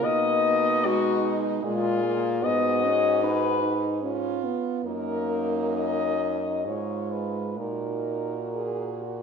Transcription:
0.00 1.61 B2 loud
0.00 0.86 A#3 medium
0.00 1.66 D#4 medium
0.04 0.87 D#5 loud
0.84 1.64 G#3 medium
0.84 1.38 F#4 loud
1.64 2.44 A#2 medium
1.64 2.03 G#3 medium
1.64 2.46 F4 loud
1.64 2.43 G#4 medium
2.04 2.45 A#3 loud
2.43 4.57 G#2 loud
2.43 2.85 B3 loud
2.43 3.73 F#4 medium
2.43 3.23 D#5 loud
2.84 3.24 C#4 medium
3.23 3.62 D#4 medium
3.23 4.01 B4 loud
3.62 4.02 D#4 medium
4.02 4.45 C#4 medium
4.02 4.81 F4 medium
4.44 4.87 B3 medium
4.85 6.67 F#2 medium
4.85 6.36 A#3 medium
4.85 6.62 D#4 medium
4.85 5.72 A#4 loud
5.77 6.64 D#5 loud
6.65 7.59 G#2 medium
6.65 7.59 G#3 medium
6.65 7.57 F4 medium
6.65 7.13 C#5 medium
7.11 7.59 B4 medium
7.57 9.22 A#2 medium
7.57 8.46 D#4 medium
7.57 9.22 F#4 medium
7.57 9.22 A#4 medium
8.55 9.04 G#4 medium
9.02 9.22 F#4 medium

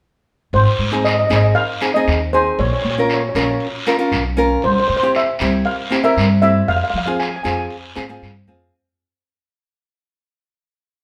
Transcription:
0.53 0.64 G#1 medium
0.53 1.07 C5 medium
0.53 long guiro medium
0.79 1.21 G#2 medium
0.91 1.15 C4 medium
0.91 1.16 D#4 medium
0.91 1.16 G#4 medium
1.05 1.13 D#5 medium
1.05 short guiro medium
1.14 1.18 D#5 medium
1.19 1.26 D#5 medium
1.27 1.52 G#1 medium
1.27 1.61 C4 medium
1.27 1.61 D#4 medium
1.27 1.61 G#4 medium
1.27 1.34 D#5 medium
1.27 short guiro medium
1.36 1.42 D#5 medium
1.44 1.51 D#5 medium
1.55 1.92 F5 medium
1.55 long guiro medium
1.81 1.89 C4 medium
1.81 1.90 D#4 medium
1.81 1.90 G#4 medium
1.81 short guiro medium
1.94 2.18 C4 medium
1.94 2.19 D#4 medium
1.94 2.19 G#4 medium
1.94 2.34 D#5 medium
2.07 2.50 D#2 medium
2.07 short guiro medium
2.33 2.59 C4 medium
2.33 2.59 D#4 medium
2.33 2.59 G#4 medium
2.33 2.57 C5 medium
2.58 2.69 A#1 medium
2.58 2.65 C#5 medium
2.58 long guiro medium
2.66 2.72 C#5 medium
2.73 2.81 C#5 medium
2.82 3.26 A#2 medium
2.82 2.89 C#5 medium
2.91 2.97 C#5 medium
2.98 3.21 C#4 medium
2.98 3.21 F4 medium
2.98 3.21 A#4 medium
2.98 3.05 C#5 medium
3.09 short guiro medium
3.14 3.19 C#5 medium
3.20 3.26 C#5 soft
3.29 3.34 C#5 medium
3.35 3.56 A#1 medium
3.35 3.66 C#4 medium
3.35 3.67 F4 medium
3.35 3.67 A#4 medium
3.35 3.42 C#5 soft
3.35 short guiro medium
3.43 3.49 C#5 medium
3.51 3.56 C#5 soft
3.60 long guiro medium
3.87 3.95 C#4 medium
3.87 3.95 F4 medium
3.87 3.95 A#4 medium
3.87 short guiro medium
3.99 4.22 C#4 medium
3.99 4.22 F4 medium
3.99 4.23 A#4 medium
4.12 4.54 B1 medium
4.12 short guiro medium
4.37 4.63 C#4 medium
4.37 4.63 F4 medium
4.37 4.64 A#4 medium
4.62 4.74 C2 medium
4.62 4.71 C5 medium
4.62 long guiro medium
4.72 4.78 C5 medium
4.80 4.87 C5 medium
4.88 5.32 C3 medium
4.88 4.95 C5 medium
4.97 5.02 C5 medium
5.03 5.25 C4 medium
5.03 5.26 E4 medium
5.03 5.26 G4 medium
5.03 5.10 C5 medium
5.15 5.63 E5 medium
5.15 short guiro medium
5.39 5.61 C2 medium
5.39 5.72 C4 medium
5.39 5.72 E4 medium
5.39 5.72 G4 medium
5.39 short guiro medium
5.65 6.06 F5 medium
5.65 long guiro medium
5.90 5.99 C4 medium
5.90 6.00 E4 medium
5.90 6.00 G4 medium
5.90 short guiro medium
6.03 6.27 C4 medium
6.03 6.27 E4 medium
6.03 6.28 A#4 medium
6.03 6.41 E5 medium
6.17 6.59 G2 medium
6.17 short guiro medium
6.42 6.68 C4 medium
6.42 6.68 E4 medium
6.42 6.69 G4 medium
6.42 6.69 E5 medium
6.68 6.79 F2 medium
6.68 6.75 F5 medium
6.68 long guiro medium
6.77 6.83 F5 medium
6.84 6.89 F5 medium
6.90 7.36 F3 medium
6.90 6.97 F5 medium
6.98 7.05 F5 medium
7.06 7.30 C4 medium
7.06 7.30 F4 medium
7.06 7.30 G#4 medium
7.06 7.14 F5 medium
7.20 7.27 G#5 medium
7.20 short guiro medium
7.29 7.35 G#5 medium
7.36 7.42 G#5 medium
7.43 7.66 F2 medium
7.43 7.75 C4 medium
7.43 7.76 F4 medium
7.43 7.76 G#4 medium
7.43 7.50 G#5 medium
7.43 short guiro medium
7.51 7.58 G#5 medium
7.59 7.65 G#5 medium
7.70 long guiro medium
7.95 8.19 G#2 medium
7.95 8.04 C4 medium
7.95 8.04 F4 medium
7.95 8.04 G#4 medium
7.95 short guiro medium
8.09 8.32 C4 medium
8.09 8.32 F4 medium
8.09 8.33 G#4 medium
8.22 8.45 G2 medium
8.22 short guiro medium
8.47 8.70 F2 medium
8.47 8.73 C4 medium
8.47 8.73 F4 medium
8.47 8.73 G#4 medium

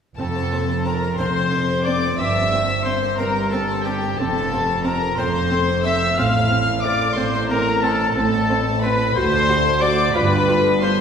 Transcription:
0.18 1.07 F1 medium
0.18 1.05 F2 medium
0.18 1.07 F2 medium
0.18 0.27 C4 medium
0.18 0.82 A4 medium
0.18 0.81 A5 loud
0.36 0.53 C4 medium
0.51 0.69 A#3 medium
0.51 0.60 C4 medium
0.69 0.86 C4 medium
0.85 0.94 C4 medium
0.85 1.03 A4 medium
0.85 1.19 A#4 medium
0.85 1.18 A#4 medium
0.85 1.18 A#5 loud
1.01 1.19 C4 medium
1.17 2.07 F1 medium
1.17 2.05 F2 medium
1.17 2.07 F2 medium
1.17 1.27 C4 medium
1.17 1.83 C5 loud
1.17 1.36 C5 medium
1.17 1.87 C5 loud
1.17 1.84 C6 loud
1.35 1.53 C4 medium
1.51 1.60 C4 medium
1.51 1.69 A4 medium
1.67 1.86 C4 medium
1.85 1.94 C4 medium
1.85 2.03 A4 medium
1.85 2.21 D5 loud
1.85 2.19 D5 loud
1.85 2.18 D6 loud
2.02 2.19 C4 medium
2.17 3.07 G1 medium
2.17 3.04 G2 medium
2.17 3.07 G2 medium
2.17 2.28 C4 medium
2.17 2.83 E5 loud
2.17 2.84 E5 loud
2.17 2.84 E6 loud
2.34 2.52 C4 medium
2.51 2.68 A#3 medium
2.51 2.60 C4 medium
2.67 2.86 C4 medium
2.85 2.94 C4 medium
2.85 3.03 G4 medium
2.85 3.18 C5 medium
2.85 3.18 C6 loud
3.02 3.19 A#4 medium
3.18 4.07 G1 medium
3.18 4.04 G2 medium
3.18 4.07 G2 medium
3.18 3.27 C4 medium
3.18 3.51 A#4 medium
3.18 3.36 C5 medium
3.18 3.51 A#5 loud
3.34 3.52 C4 medium
3.50 3.61 C4 medium
3.50 3.85 A4 medium
3.50 3.87 A4 loud
3.50 3.69 A#4 medium
3.50 3.84 A5 loud
3.68 3.86 C4 medium
3.83 3.94 C4 medium
3.83 4.17 G4 medium
3.83 4.02 G4 medium
3.83 4.21 G4 medium
3.83 4.18 G5 loud
4.01 4.18 A#4 medium
4.17 5.06 F1 loud
4.17 5.03 F2 medium
4.17 5.06 F2 loud
4.17 4.28 C4 medium
4.17 4.84 A4 loud
4.17 4.87 A4 medium
4.17 4.84 A5 loud
4.35 4.53 C4 medium
4.52 4.68 A#3 medium
4.52 4.60 C4 medium
4.67 4.85 C4 medium
4.84 4.93 C4 medium
4.84 5.02 A4 medium
4.84 5.17 A#4 medium
4.84 5.19 A#4 medium
4.84 5.17 A#5 loud
5.01 5.19 C4 medium
5.17 6.05 F1 medium
5.17 6.03 F2 medium
5.17 6.06 F2 medium
5.17 5.26 C4 medium
5.17 5.82 C5 loud
5.17 5.35 C5 medium
5.17 5.84 C5 loud
5.17 5.84 C6 loud
5.34 5.51 C4 medium
5.51 5.59 C4 medium
5.51 5.68 A4 medium
5.68 5.85 C4 medium
5.84 5.93 C4 medium
5.84 6.01 A4 medium
5.84 6.17 E5 loud
5.84 6.20 E5 loud
5.84 6.16 E6 loud
6.02 6.18 C4 medium
6.16 7.05 A1 loud
6.16 7.05 A2 loud
6.16 7.03 A2 medium
6.16 6.25 C4 medium
6.16 6.82 F5 medium
6.16 6.86 F5 loud
6.16 6.83 F6 loud
6.35 6.52 A3 medium
6.51 6.59 C4 medium
6.68 6.85 A3 medium
6.82 6.92 C4 medium
6.82 7.01 C4 medium
6.82 7.15 D5 loud
6.82 7.16 D5 medium
6.82 7.16 D6 loud
7.01 7.18 A4 medium
7.15 8.04 A1 loud
7.15 8.02 A2 medium
7.15 8.04 A2 loud
7.15 7.24 C4 medium
7.15 7.34 C4 medium
7.15 7.49 C5 medium
7.15 7.50 C5 medium
7.15 7.49 C6 loud
7.33 7.50 A3 medium
7.48 7.58 C4 medium
7.48 7.67 A4 medium
7.48 7.82 A#4 loud
7.48 7.81 A#5 loud
7.67 7.84 A3 medium
7.82 7.91 C4 medium
7.82 8.00 C4 medium
7.82 8.15 A4 loud
7.82 8.14 A4 medium
7.82 8.14 A5 loud
8.00 8.16 A4 medium
8.15 9.03 A1 loud
8.15 9.01 A2 medium
8.15 9.04 A2 loud
8.15 8.25 C4 medium
8.15 8.66 A4 loud
8.15 8.81 A4 loud
8.15 8.81 A5 loud
8.33 8.50 A3 medium
8.51 8.59 C4 medium
8.67 8.83 A3 medium
8.81 8.99 C4 medium
8.81 8.91 C4 medium
8.81 9.14 B4 loud
8.81 9.15 B4 loud
8.81 9.15 B5 loud
8.99 9.15 A4 medium
9.15 10.03 D2 loud
9.15 10.01 D2 medium
9.15 9.24 F#4 medium
9.15 9.80 C5 loud
9.15 9.83 C5 loud
9.15 9.82 C6 loud
9.32 9.49 D4 medium
9.48 9.65 C4 medium
9.48 9.56 F#4 medium
9.65 9.83 D4 medium
9.81 9.89 F#4 medium
9.81 9.99 F#4 medium
9.81 10.14 D5 loud
9.81 10.15 D5 loud
9.81 10.15 D6 loud
9.98 10.15 A4 medium
10.15 11.01 G1 loud
10.15 11.01 G2 medium
10.15 11.01 G2 loud
10.15 10.24 F4 medium
10.15 10.80 B4 loud
10.15 10.82 B4 loud
10.15 10.81 B5 loud
10.32 10.49 B3 medium
10.49 10.65 A3 medium
10.49 10.57 F4 medium
10.65 10.82 B3 medium
10.81 10.99 D4 medium
10.81 10.91 F4 medium
10.81 11.01 C5 loud
10.81 11.01 C6 loud
10.97 11.01 F4 medium

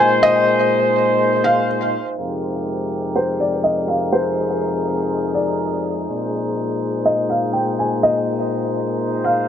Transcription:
0.00 2.01 A#2 medium
0.00 2.01 G#3 medium
0.00 2.01 D#4 medium
0.00 2.01 C5 medium
0.00 0.22 G#5 medium
0.23 1.41 D#5 loud
1.44 1.68 F5 medium
2.18 6.04 F2 medium
2.18 6.04 C3 medium
2.18 9.48 G#3 medium
2.18 9.48 D#4 medium
2.18 4.11 G4 medium
2.18 6.04 A#4 medium
3.16 3.39 C5 medium
3.40 3.63 D5 medium
3.64 3.87 D#5 medium
3.88 4.11 F5 medium
4.13 6.06 G#4 medium
4.13 5.31 C5 loud
5.34 6.04 D5 medium
6.08 9.48 A#2 medium
6.08 9.48 C5 medium
7.06 7.29 D#5 medium
7.30 7.53 F5 medium
7.53 7.77 G5 medium
7.79 8.02 G#5 medium
8.03 9.21 D#5 loud
9.24 9.48 F5 medium

